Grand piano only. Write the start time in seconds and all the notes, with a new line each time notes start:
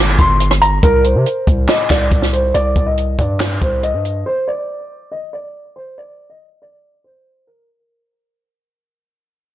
Already playing: D6
0.19 C6
0.62 A#5
0.83 A#4
1.04 C5
1.69 D#5
1.90 D5
2.33 C5
2.54 D5
2.87 D#5
3.19 D5
3.61 C5
3.83 D#5
4.26 C5
4.48 D5
5.12 D#5
5.33 D5
5.76 C5
5.98 D5
6.30 D#5
6.62 D5
7.04 C5
7.47 A#4